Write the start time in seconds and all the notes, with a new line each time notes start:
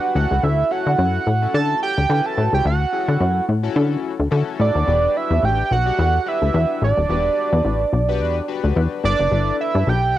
Already playing: D4 F#4 G4 B4 F#5
0.15 D2 C#4 E4 F#4 A4 F#5
0.31 C#2
0.43 D2 E5
0.70 C#4 E4 F#4 A4 F#5
0.86 D3
0.98 F#2
1.27 A2
1.42 C#4 E4 F#4 A4
1.54 D3 A5
1.83 G5
1.97 D2
2.09 D3 C#4 E4 F#4 B4
2.26 A5
2.38 A2
2.53 C#2 G5
2.65 D2 F#5
2.93 C#4 E4 F#4 G#4
3.00 A4
3.08 D3
3.20 F#2
3.49 A2
3.63 C#4 E4 F#4 A4
3.76 D3
4.19 D2
4.31 D3 C#4 E4 F#4 A4
4.60 A2 D5
4.75 D#2
4.87 E1 D4 F#4 G4 B4
5.17 E5
5.30 E2
5.43 A1 G5
5.71 B1 F#5
5.86 D4 F#4 G4 A4
5.99 E2
6.26 D4 F#4 G4 B4 E5
6.42 D2
6.54 E2
6.82 A1 D5
6.97 D#1
7.09 E1 D4 F#4 G4 B4
7.53 E2
7.65 A1
7.93 B1
8.08 D4 F#4 G4 B4
8.20 E2
8.48 D4 F#4 G4 B4
8.64 D2
8.76 E2
9.03 G1 D4 E4 A4 B4 D5
9.19 F#1
9.31 G1
9.61 E5
9.75 G2
9.87 B1 G5
10.15 D2